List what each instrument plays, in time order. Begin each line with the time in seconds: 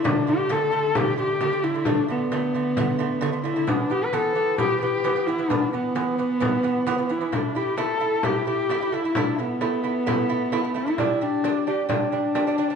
0.04 lute D3 A3, horsehead fiddle D4, frame drum
0.27 lute D3 A3, horsehead fiddle G4, frame drum
0.49 lute D3 A3, horsehead fiddle A4, frame drum
0.72 lute D3 A3, frame drum
0.95 lute D3 A3, horsehead fiddle G4, frame drum
1.18 lute D3 A3, horsehead fiddle G4
1.41 lute D3 A3, frame drum
1.52 lute D3 A3
1.63 lute D3 A3, horsehead fiddle E4, frame drum
1.74 lute D3 A3
1.85 lute D3 A3, horsehead fiddle D4, frame drum
2.08 lute D3 A3, horsehead fiddle B3, frame drum
2.32 lute D3 A3, frame drum
2.54 lute D3 A3, frame drum
2.77 lute D3 A3, frame drum
2.99 lute D3 A3
3.21 lute D3 A3, frame drum
3.32 lute D3 A3
3.44 lute D3 A3, horsehead fiddle E4, frame drum
3.56 lute D3 A3
3.67 lute E3 B3, horsehead fiddle D4, frame drum
3.90 lute E3 B3, horsehead fiddle G4, frame drum
4.05 horsehead fiddle B4
4.13 lute E3 B3, horsehead fiddle A4, frame drum
4.35 lute E3 B3, frame drum
4.58 lute E3 B3, horsehead fiddle G4, frame drum
4.81 lute E3 B3, horsehead fiddle G4
5.04 lute E3 B3, frame drum
5.16 lute E3 B3
5.27 lute E3 B3, horsehead fiddle E4, frame drum
5.38 lute E3 B3
5.50 lute E3 B3, horsehead fiddle D4, frame drum
5.73 lute E3 B3, horsehead fiddle B3, frame drum
5.95 lute E3 B3, frame drum
6.18 lute E3 B3, frame drum
6.40 lute E3 B3, frame drum
6.63 lute E3 B3
6.87 lute E3 B3, frame drum
6.98 lute E3 B3
7.09 lute E3 B3, horsehead fiddle E4, frame drum
7.21 lute E3 B3
7.32 lute A3 E4, horsehead fiddle D4, frame drum
7.55 lute A3 E4, horsehead fiddle G4, frame drum
7.78 lute A3 E4, horsehead fiddle A4, frame drum
8.00 lute A3 E4, frame drum
8.23 lute A3 E4, horsehead fiddle G4, frame drum
8.47 lute A3 E4, horsehead fiddle G4
8.69 lute A3 E4, frame drum
8.81 lute A3 E4
8.92 lute A3 E4, horsehead fiddle E4, frame drum
9.04 lute A3 E4
9.15 lute A3 E4, horsehead fiddle D4, frame drum
9.39 lute A3 E4, horsehead fiddle B3, frame drum
9.61 lute A3 E4, frame drum
9.84 lute A3 E4, frame drum
10.06 lute A3 E4, frame drum
10.29 lute A3 E4
10.52 lute A3 E4, frame drum
10.63 lute A3 E4
10.74 lute A3 E4, horsehead fiddle E4, frame drum
10.86 lute A3 E4
10.98 lute G3 D4, frame drum
11.21 lute G3 D4, horsehead fiddle D4, frame drum
11.44 lute G3 D4, frame drum
11.67 lute G3 D4, horsehead fiddle G4, frame drum
11.89 lute G3 D4, horsehead fiddle D4, frame drum
12.12 lute G3 D4
12.35 lute G3 D4, frame drum
12.47 lute G3 D4
12.58 lute G3 D4, frame drum
12.70 lute G3 D4